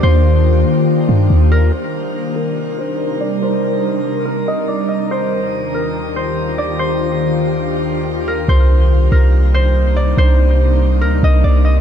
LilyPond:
<<
  \new Staff \with { instrumentName = "Harp" } { \time 4/4 \key c \minor \tempo 4 = 142 c''2 r4. bes'8 | c''4. bes'4 c''4 d''8 | c''2 bes'8 ees''8 d''8 ees''8 | c''4. bes'4 c''4 d''8 |
c''2 r4. bes'8 | c''4. bes'4 c''4 d''8 | c''2 bes'8 ees''8 d''8 ees''8 | }
  \new Staff \with { instrumentName = "Ambient pad" } { \time 4/4 \key c \minor <ees bes d' f' g'>1 | <c g d' ees' bes'>1~ | <c g d' ees' bes'>1 | <ees, ees d' f' g'>1~ |
<ees, ees d' f' g'>1 | <c g bes d' ees'>1~ | <c g bes d' ees'>1 | }
  \new Staff \with { instrumentName = "808-style bass" } { \clef bass \time 4/4 \key c \minor ees,4. r4 g,8 ees,4 | r1 | r1 | r1 |
r1 | c,4. c,2~ c,8 | c,2 d,8 c,8 c,4 | }
>>